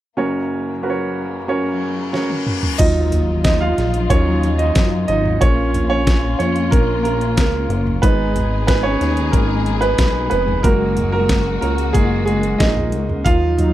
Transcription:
0.17 grand piano F#1 F#2 C#4 F#4 A#4 C#5, string section F#2 C#3 A#3
0.83 grand piano C#4 F#4 A#4 B4
0.90 grand piano C#5
1.48 grand piano C#4 F#4 A#4 C#5, reverse cymbal
2.13 grand piano C#4 F#4 A#4 C#5, snare
2.30 high tom
2.47 mid tom
2.63 floor tom
2.78 analog synth bass D#2, grand piano F#3 D#4 F4 D#5, string section F#3 D#4 F4, kick, closed hi-hat, crash, impact
3.12 closed hi-hat, floor tom
3.44 grand piano D#4 D#5, kick, snare, closed hi-hat
3.61 grand piano F4 F5
3.78 analog synth bass A#1, snare, closed hi-hat
3.94 closed hi-hat
4.10 analog synth bass D#2, grand piano F#3 C#4 D#4 F4 C#5, kick, closed hi-hat
4.43 closed hi-hat
4.58 grand piano D#4 D#5, closed hi-hat
4.75 analog synth bass F#2, kick, snare, closed hi-hat
5.08 analog synth bass G#1, grand piano D#4 D#5, closed hi-hat
5.25 floor tom
5.41 analog synth bass A#1, grand piano A#3 C#4 F4 C#5, string section A#3 C#4 F4, kick, closed hi-hat
5.74 closed hi-hat, floor tom
5.90 grand piano C#4 C#5
6.07 kick, snare, closed hi-hat
6.39 analog synth bass F2, grand piano C#4 C#5, closed hi-hat
6.56 closed hi-hat
6.71 analog synth bass A#1, grand piano A#3 A#4, kick, closed hi-hat
7.03 grand piano A#3 A#4, closed hi-hat
7.21 closed hi-hat
7.37 analog synth bass C#2, grand piano A#3 A#4, kick, snare, closed hi-hat
7.69 analog synth bass F#1, closed hi-hat
7.87 floor tom
8.02 analog synth bass G#1, grand piano G#3 B3 D#4 B4, string section G#3 D#4 G#4, kick, closed hi-hat
8.36 closed hi-hat, floor tom
8.67 grand piano B3 B4, kick, snare, closed hi-hat
8.83 grand piano C#4 C#5
9.01 analog synth bass D#2, snare, closed hi-hat
9.17 closed hi-hat
9.32 analog synth bass G#1, grand piano A#3 A#4, kick, closed hi-hat
9.66 closed hi-hat
9.81 grand piano B3 B4, closed hi-hat
9.98 analog synth bass B1, kick, snare, closed hi-hat
10.30 analog synth bass F1, grand piano B3 B4, closed hi-hat
10.48 floor tom
10.63 analog synth bass F#1, grand piano G#3 A#3 F#4 A#4, string section A#3 F#4, kick, closed hi-hat
10.97 closed hi-hat, floor tom
11.12 grand piano A#3 A#4
11.29 kick, snare, closed hi-hat
11.61 analog synth bass C#2, grand piano A#3 A#4, closed hi-hat
11.78 closed hi-hat
11.93 analog synth bass F#1, grand piano G#3 G#4, kick, closed hi-hat
12.26 grand piano G#3 G#4, closed hi-hat
12.43 closed hi-hat
12.58 analog synth bass A#1, grand piano D#4 D#5, kick, snare, closed hi-hat
12.77 floor tom
12.92 analog synth bass C#2, closed hi-hat
13.09 floor tom
13.25 analog synth bass D#2, string section F#3 D#4, grand piano F4 F5, kick, closed hi-hat
13.58 grand piano F#3 D#4, closed hi-hat, floor tom

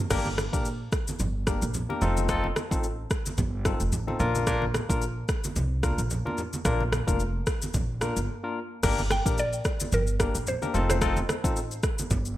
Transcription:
0.10 upright bass G1, tine electric piano A#3 D4 G4 A#4, kick, cross-stick, crash, low conga, shaker
0.26 high conga
0.38 cross-stick, high conga, shaker
0.53 upright bass A#1, tine electric piano A#3 D4 G4 A#4, kick, shaker
0.65 shaker
0.92 kick, cross-stick, shaker
1.07 high conga, shaker
1.19 upright bass G1, low conga, shaker
1.47 tine electric piano A#3 D4 G4 A#4, kick, cross-stick, high conga, shaker
1.62 upright bass A#1, shaker
1.74 low conga, shaker
1.89 tine electric piano A#3 D4 G4 A#4, high conga
2.01 upright bass F1, tine electric piano C4 D#4 F4 A4, low conga, shaker
2.17 high conga, shaker
2.29 tine electric piano C4 D#4 F4 A4, kick, cross-stick, low conga, shaker
2.44 high conga
2.56 cross-stick, high conga, shaker
2.71 upright bass A1, tine electric piano C4 D#4 F4 A4, kick, shaker
2.84 shaker
3.10 kick, cross-stick, shaker
3.26 high conga, shaker
3.38 upright bass G1, kick, low conga, shaker
3.65 tine electric piano C4 D#4 F4 A4, kick, cross-stick, high conga, shaker
3.80 upright bass F1, shaker
3.92 upright bass A1, low conga, shaker
4.07 tine electric piano C4 D#4 F4 A4, high conga
4.19 upright bass A#1, tine electric piano A#3 D4 F4 A#4, low conga, shaker
4.35 high conga, shaker
4.47 tine electric piano A#3 D4 F4 A#4, kick, cross-stick, low conga, shaker
4.62 high conga
4.74 cross-stick, high conga, shaker
4.89 upright bass A#1, tine electric piano A#3 D4 F4 A#4, kick, shaker
5.02 shaker
5.28 kick, cross-stick, shaker
5.44 high conga, shaker
5.56 upright bass C2, low conga, shaker
5.83 tine electric piano A#3 D4 F4 A#4, kick, cross-stick, high conga, shaker
5.98 upright bass A#1, shaker
6.10 low conga, shaker
6.25 tine electric piano A#3 D4 F4 A#4, high conga
6.38 low conga, shaker
6.53 high conga, shaker
6.65 upright bass A#1, tine electric piano A#3 D4 F4 A#4, kick, cross-stick, low conga, shaker
6.80 high conga
6.92 cross-stick, high conga, shaker
7.07 upright bass F1, tine electric piano A#3 D4 F4 A#4, kick, shaker
7.20 shaker
7.46 kick, cross-stick, shaker
7.62 high conga, shaker
7.74 upright bass A#1, kick, low conga, shaker
8.01 tine electric piano A#3 D4 F4 A#4, cross-stick, high conga, shaker
8.17 upright bass G1, shaker
8.43 tine electric piano A#3 D4 F4 A#4
8.83 upright bass G1, tine electric piano A#3 D4 G4 A#4, kick, cross-stick, crash, low conga, shaker
8.98 high conga, shaker
9.11 synth pluck G5, cross-stick, high conga, shaker
9.25 upright bass A#1, tine electric piano A#3 D4 G4 A#4, kick, shaker
9.38 synth pluck D5, shaker
9.53 shaker
9.65 kick, cross-stick, shaker
9.80 high conga, shaker
9.92 upright bass G1, synth pluck A#4, low conga, shaker
10.07 shaker
10.19 tine electric piano A#3 D4 G4 A#4, kick, cross-stick, high conga, shaker
10.35 upright bass A#1, shaker
10.47 synth pluck C5, low conga, shaker
10.62 tine electric piano A#3 D4 G4 A#4, high conga, shaker
10.74 upright bass F1, tine electric piano C4 D#4 F4 A4, low conga, shaker
10.90 synth pluck C5, cross-stick, high conga, shaker
11.01 tine electric piano C4 D#4 F4 A4, kick, cross-stick, low conga, shaker
11.17 high conga, shaker
11.29 cross-stick, high conga, shaker
11.44 upright bass A1, tine electric piano C4 D#4 F4 A4, kick, shaker
11.56 shaker
11.71 shaker
11.83 kick, cross-stick, shaker
11.98 high conga, shaker
12.10 upright bass G1, kick, low conga, shaker
12.25 shaker

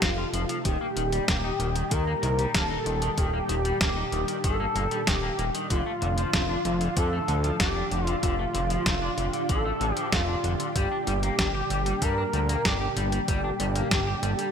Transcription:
Already playing: analog synth pad C3 F3 A3 D#4 A4
0.02 analog synth bass F1, clean electric guitar C4, analog synth lead F4, kick, snare, closed hi-hat
0.18 clean electric guitar F4
0.33 analog synth bass F1, clean electric guitar F3, closed hi-hat
0.49 clean electric guitar F3, closed hi-hat
0.65 analog synth bass D#1, analog synth pad A#2 D#3 G3 G4, clean electric guitar D#3, analog synth lead G4, kick, closed hi-hat
0.81 clean electric guitar A#3
0.97 analog synth bass D#1, clean electric guitar D#3, closed hi-hat
1.12 clean electric guitar G3, closed hi-hat
1.28 analog synth bass D#1, clean electric guitar A#3, kick, snare, closed hi-hat
1.44 clean electric guitar D#4
1.60 analog synth bass D#1, clean electric guitar D#3, closed hi-hat
1.76 clean electric guitar D#3, closed hi-hat
1.91 analog synth bass D#2, clean electric guitar D#3, analog synth lead A#4, kick, closed hi-hat
2.07 clean electric guitar A#3
2.23 analog synth bass C2, clean electric guitar D#3, closed hi-hat
2.39 clean electric guitar G3, closed hi-hat
2.54 analog synth bass D#1, clean electric guitar A#3, analog synth lead A4, kick, snare, closed hi-hat
2.70 clean electric guitar D#4
2.86 analog synth bass D#1, clean electric guitar D#3, closed hi-hat
3.02 clean electric guitar D#3, closed hi-hat
3.18 analog synth bass D#1, clean electric guitar D#3, analog synth pad D4, analog synth lead G4, kick, closed hi-hat
3.33 clean electric guitar A#3
3.49 analog synth bass D#1, clean electric guitar D#3, closed hi-hat
3.65 clean electric guitar G3, closed hi-hat
3.81 analog synth bass D#1, clean electric guitar A#3, analog synth lead G4, kick, snare, closed hi-hat
3.97 clean electric guitar D#4
4.12 analog synth bass D#1, clean electric guitar D#3, closed hi-hat
4.28 clean electric guitar D#3, closed hi-hat
4.44 analog synth bass G1, clean electric guitar D#3, analog synth lead A4, kick, closed hi-hat
4.60 clean electric guitar A#3
4.76 analog synth bass G1, clean electric guitar A#3, closed hi-hat
4.91 clean electric guitar G3, closed hi-hat
5.07 analog synth bass D#1, clean electric guitar D#3, analog synth lead G4, kick, snare, closed hi-hat
5.23 clean electric guitar A#3
5.39 analog synth bass D#1, clean electric guitar A#3, closed hi-hat
5.55 clean electric guitar D#3, closed hi-hat
5.70 analog synth bass F1, analog synth pad A2 D3 F3 F4, clean electric guitar D3, analog synth lead F4, kick, closed hi-hat
5.86 clean electric guitar A3
6.02 analog synth bass F1, clean electric guitar D3, closed hi-hat
6.18 clean electric guitar F3, closed hi-hat
6.33 analog synth bass F1, clean electric guitar A3, kick, snare, closed hi-hat
6.49 clean electric guitar D4
6.65 analog synth bass F1, clean electric guitar D3, closed hi-hat
6.81 clean electric guitar D3, closed hi-hat
6.97 analog synth bass F2, clean electric guitar D3, analog synth lead A4, kick, closed hi-hat
7.13 clean electric guitar A3
7.28 analog synth bass D2, clean electric guitar D3, closed hi-hat
7.44 clean electric guitar F3, closed hi-hat
7.60 analog synth bass F1, clean electric guitar A3, analog synth lead G4, kick, snare, closed hi-hat
7.76 clean electric guitar D4
7.91 analog synth bass F1, clean electric guitar D3, closed hi-hat
8.05 clean electric guitar D3, analog synth lead F4, closed hi-hat
8.23 analog synth bass F1, clean electric guitar D3, analog synth lead F4, analog synth pad G4, kick, closed hi-hat
8.39 clean electric guitar A3
8.55 analog synth bass F1, clean electric guitar D3, closed hi-hat
8.70 clean electric guitar F3, closed hi-hat
8.86 analog synth bass F1, clean electric guitar A3, kick, snare, closed hi-hat
9.02 clean electric guitar D4
9.18 analog synth bass F1, clean electric guitar D3, closed hi-hat
9.33 clean electric guitar D3, closed hi-hat
9.49 analog synth bass A1, clean electric guitar D3, analog synth lead A4, kick, closed hi-hat
9.65 clean electric guitar A3
9.81 analog synth bass A1, clean electric guitar D3, closed hi-hat
9.94 clean electric guitar F3, analog synth lead G4, closed hi-hat
10.12 analog synth bass F1, clean electric guitar A3, analog synth lead F4, kick, snare, closed hi-hat
10.28 clean electric guitar D4
10.44 analog synth bass F1, clean electric guitar D3, closed hi-hat
10.60 clean electric guitar D3, closed hi-hat
10.76 analog synth bass G1, analog synth pad A#2 G3, clean electric guitar G3, analog synth lead G4, kick, closed hi-hat
10.92 clean electric guitar D4
11.07 analog synth bass G1, clean electric guitar G3, closed hi-hat
11.23 clean electric guitar A#3, closed hi-hat
11.39 analog synth bass G1, clean electric guitar D4, kick, snare, closed hi-hat
11.55 clean electric guitar G4
11.70 analog synth bass G1, clean electric guitar G3, closed hi-hat
11.86 clean electric guitar G3, closed hi-hat
12.02 analog synth bass G2, clean electric guitar G3, analog synth lead A#4, kick, closed hi-hat
12.18 clean electric guitar D4
12.33 analog synth bass D2, clean electric guitar G3, closed hi-hat
12.49 clean electric guitar A#3, closed hi-hat
12.65 analog synth bass G1, clean electric guitar D4, analog synth lead G4, kick, snare, closed hi-hat
12.81 clean electric guitar G4
12.97 analog synth bass G1, clean electric guitar G3, analog synth lead G4, closed hi-hat
13.12 clean electric guitar G3, closed hi-hat
13.28 analog synth bass G1, clean electric guitar G3, analog synth pad A4, kick, closed hi-hat
13.44 clean electric guitar D4
13.60 analog synth bass G1, clean electric guitar G3, closed hi-hat
13.76 clean electric guitar A#3, closed hi-hat
13.91 analog synth bass G1, clean electric guitar D4, kick, snare, closed hi-hat
14.07 clean electric guitar G4
14.23 analog synth bass G1, clean electric guitar G3, closed hi-hat
14.39 clean electric guitar G3, closed hi-hat

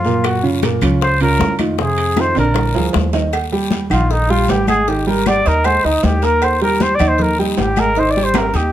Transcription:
Already playing: upright bass F#2, trumpet F4
0.05 grand piano A#2 A#3 A#4, high bongo, high conga, short guiro
0.24 trumpet F#4, high bongo, high conga, high timbale, long guiro, claves
0.43 grand piano C#3 C#4 F4, high conga
0.62 grand piano A#2 A#3 A#4, high bongo, high conga, high timbale, low timbale, short guiro
0.81 upright bass C#2, grand piano C#3 C#4 F4, high conga, low conga, high timbale, short guiro, claves
1.01 trumpet C5, high bongo, long guiro
1.20 grand piano C#3 C#4 F4, trumpet A#4, high conga, high timbale
1.39 upright bass F2, high bongo, low bongo, high conga, low timbale, short guiro
1.59 grand piano D#3 D#4 F4, high conga, high timbale, short guiro, claves
1.78 grand piano C3 C4 C5, trumpet G#4, high bongo, high conga, long guiro
1.98 high bongo, high conga, high timbale
2.16 grand piano D#3 D#4 F4, trumpet C5, high bongo, high conga, high timbale, short guiro, claves
2.35 upright bass A#1, grand piano D3 D4 D5, trumpet A#4, high bongo, high conga, high timbale, short guiro
2.54 high bongo, high conga, low timbale, long guiro, claves
2.75 upright bass D2, grand piano F3 F4 G#4, high conga, low timbale
2.93 upright bass D#2, high bongo, low bongo, high conga, low timbale, short guiro
3.13 grand piano D#3 D#4 D#5, high bongo, high conga, low timbale, short guiro
3.33 cowbell, high conga, low agogo, long guiro, claves
3.51 grand piano G3 G4 G5, high conga
3.70 cowbell, high conga, low timbale, low agogo, short guiro
3.90 upright bass A#1, grand piano D#3 D#4 D#5, trumpet F4, high conga, low conga, low agogo, short guiro, claves
4.09 trumpet D#4, cowbell, high conga, long guiro
4.28 grand piano G3 G4 G5, trumpet F4, high conga
4.48 upright bass G#1, trumpet G4, cowbell, high conga, low timbale, low agogo, short guiro
4.67 grand piano G#3 G#4 G#5, trumpet G#4, cowbell, high conga, low agogo, short guiro, claves
4.87 grand piano D#3 D#4 D#5, trumpet G4, cowbell, high conga, long guiro
5.07 grand piano G3 G4 G5, trumpet A#4, high conga
5.26 trumpet D5, cowbell, high conga, low timbale, low agogo, short guiro, claves
5.45 upright bass D#2, grand piano D#4 D#5 D#6, trumpet A#4, high conga, low agogo, short guiro
5.64 grand piano G#3 G#4 G#5, trumpet C5, cowbell, high conga, low agogo, long guiro, claves
5.84 upright bass D2, grand piano D#4 D#5 D#6, trumpet D#4, high conga
6.03 upright bass D#2, trumpet G4, cowbell, high conga, low timbale, low agogo, short guiro
6.22 grand piano A#3 A#4 A#5, trumpet A#4, high conga, low agogo, short guiro
6.42 trumpet C5, cowbell, high conga, low agogo, long guiro, claves
6.61 grand piano G3 G4 G5, trumpet A#4, high conga
6.80 trumpet C5, cowbell, high conga, low timbale, low agogo, short guiro
6.95 trumpet D5
6.99 upright bass D#2, grand piano D#3 D#4 D#5, high conga, low conga, low agogo, short guiro, claves
7.08 trumpet C5
7.18 trumpet A#4, cowbell, high conga, low conga, long guiro
7.38 grand piano G3 G4 G5, trumpet D#4, high conga
7.57 upright bass G#1, trumpet G4, cowbell, high conga, low timbale, low agogo, short guiro
7.76 grand piano G#3 G#4 G#5, trumpet A#4, cowbell, high conga, low agogo, short guiro, claves
7.95 grand piano D#3 D#4 D#5, trumpet C5, cowbell, high conga, long guiro
8.11 trumpet D5
8.16 grand piano G3 G4 G5, high conga
8.24 trumpet C5
8.34 trumpet A#4, cowbell, high conga, high timbale, low agogo, short guiro, claves
8.54 upright bass D#2, grand piano D#4 D#5 D#6, trumpet G4, high conga, low agogo, short guiro

